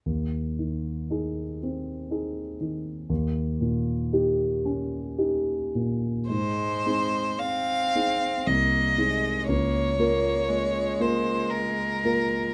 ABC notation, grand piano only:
X:1
M:3/4
L:1/8
Q:1/4=58
K:Ab
V:1 name="Grand piano"
E,, E, [EA] C [EA] E, | E,, B,, [EG] D [EG] B,, | A,, [CEA]2 [CEA] C,, [CEA] | D,, [B,FB]2 [B,FB]2 [B,FB] |]